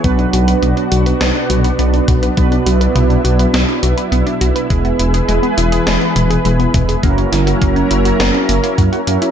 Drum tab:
HH |xxxxxxxxxxxxxxxx|xxxxxxxxxxxxxxxx|xxxxxxxxxxxxxxxx|xxxxxxxxxxxxxxxx|
SD |--------o-------|--------o-------|--------o-------|--o-----o-------|
T2 |----------o---o-|----o-----------|----------o---o-|----------------|
BD |o-------------o-|o---------------|o-------------o-|o---o-------o---|